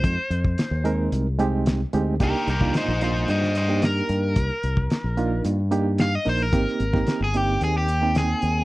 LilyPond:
<<
  \new Staff \with { instrumentName = "Overdriven electric guitar" } { \time 4/4 \key c \minor \tempo 4 = 111 c''2 r2 | <g' bes'>8 <g' bes'>8 <ees' c''>8 <ees' c''>8 <c'' ees''>8 <c'' ees''>8 bes'4~ | bes'2 r4 f''16 ees''16 c''16 bes'16~ | bes'4~ bes'16 aes'16 g'8 aes'16 g'8. aes'4 | }
  \new Staff \with { instrumentName = "Reed electric piano" } { \time 4/4 \key c \minor <aes c' ees' f'>16 r4 r16 <aes c' ees' bes'>8. r16 <aes c' ees' g'>8. r16 <aes c' ees' g'>8 | <bes d' ees' g'>8 r16 <bes d' ees' f'>8 r16 <bes d' ees' f'>4 r16 <bes d' ees' g'>4~ <bes d' ees' g'>16~ | <bes d' ees' g'>16 r4 r16 <bes d' ees' f'>8. r16 <bes d' ees' g'>8. r16 <bes d' ees' bes'>8 | <bes c' ees' g'>8 r16 <bes c' ees' g'>8 r16 <bes c' ees' g'>4 r16 <bes c' ees' g''>4~ <bes c' ees' g''>16 | }
  \new Staff \with { instrumentName = "Fingered electric bass" } { \clef bass \time 4/4 \key c \minor f,16 r16 f,8 r16 ees,8. c,4. d,8 | c,16 r16 c,8 r16 bes,,8. g,4. g,8 | c,16 r16 c,8 r16 bes,,8. g,4. bes,,8 | aes,,16 r16 aes,,8 r16 g,,8. ees,4. ees,8 | }
  \new DrumStaff \with { instrumentName = "Drums" } \drummode { \time 4/4 <hh bd>8 hh16 bd16 <hh sn>8 hh8 hh8 hh8 <hh sn>8 hh8 | <hh bd>8 hh16 bd16 <hh sn>8 hh8 hh16 sn16 hh8 <hh sn>8 hh8 | <hh bd>8 hh16 bd16 <hh sn>8 hh8 hh8 hh8 <hh sn>8 hho8 | <hh bd>16 sn16 hh16 <bd sn>16 <hh sn>8 hh8 hh8 hh8 <hh sn>8 hh8 | }
>>